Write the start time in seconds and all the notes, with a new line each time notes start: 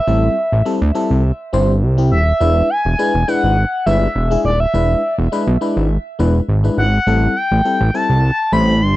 Already playing: E5
0.07 A1 G3 C4 E4 A4
0.52 A1
0.65 G3 C4 E4 A4
0.82 D2
0.95 G3 C4 E4 A4
1.11 C2
1.53 G1 G3 C4 E4 C5
1.82 C2
1.98 G3 C4 E4 G4
2.11 D#1 E5
2.40 E1 G#3 D4 E4 B4
2.70 G#5
2.85 E1
2.99 G#3 D4 E4 B4
3.14 E1
3.28 G#3 D4 E4 B4 F#5
3.44 G#1
3.86 G1 G#3 D4 E4 B4 E5
4.16 E1
4.31 G#3 D4 E4 G#4
4.45 D#1 D5
4.60 E5
4.74 E1 G#3 D4 E4 B4
5.18 E1
5.32 G#3 D4 E4 B4
5.47 B1
5.61 G#3 D4 E4 B4
5.77 G#1
6.19 E1 G#3 D4 E4 B4
6.49 G#1
6.64 G#3 D4 E4 B4
6.78 G#1 F#5
7.07 A1 G3 C4 E4 A4
7.37 G5
7.52 A1
7.65 G3 C4 E4 A4
7.81 A1
7.94 G3 C4 E4 A4 A5
8.10 C2
8.52 A1 G3 C4 E4 C5 B5
8.82 G1 C6